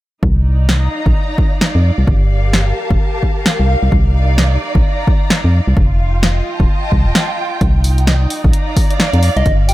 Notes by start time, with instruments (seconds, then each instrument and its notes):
0.23 fm bass C2, string section D#4, kick
0.29 string section D5
0.69 string section A#5, snare
0.75 string section F5
1.06 fm bass A#1, kick
1.38 kick
1.61 snare
1.75 fm bass F2
1.98 fm bass C2
2.07 fm bass G1, string section G4, kick
2.23 string section A#4
2.53 snare
2.68 string section A5
2.91 fm bass F1, kick
3.23 kick
3.46 snare
3.60 fm bass C2
3.69 string section D#4
3.76 string section D5
3.83 fm bass C2
3.92 fm bass C2, kick
4.38 snare
4.63 string section A#5
4.75 fm bass A#1, kick
5.07 kick
5.30 snare
5.44 fm bass F2
5.68 fm bass C2
5.77 fm bass F1, string section F4, kick
5.98 string section G5
6.21 string section D#5, snare
6.58 fm bass D#1, string section A5, kick
6.92 fm bass C2, kick
7.06 fm bass D#1
7.15 snare
7.61 fm bass C2, string section D#4, kick, closed hi-hat
7.84 open hi-hat
7.98 closed hi-hat
8.04 string section D5, snare
8.30 open hi-hat
8.44 fm bass A#1, string section F5 A#5, kick
8.53 closed hi-hat
8.77 kick, open hi-hat
8.91 closed hi-hat
9.00 snare
9.13 fm bass F2, closed hi-hat
9.23 open hi-hat
9.37 fm bass C2, soft synth lead D#5, closed hi-hat
9.46 fm bass G1, string section F4, kick, closed hi-hat
9.69 soft synth lead G5, open hi-hat